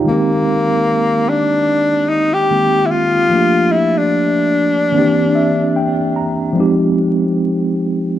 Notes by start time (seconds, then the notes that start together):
Already playing: D#4 G5
0.04 D#3 G#3 A#3
0.09 A#3 C4 G4
1.29 D4
2.09 D#4
2.34 G4
2.50 D#3 G#3 A#3 C4 G4
2.86 E4
2.91 F4
3.29 F3 A3 A#3
3.35 D4 G4
3.72 E4
3.97 D4
4.92 D#3 A#3 C4
4.97 E3 D4 G4
5.35 E5
5.76 G5
6.16 A#5
6.53 F3 G#3 C4
6.58 D#4 G4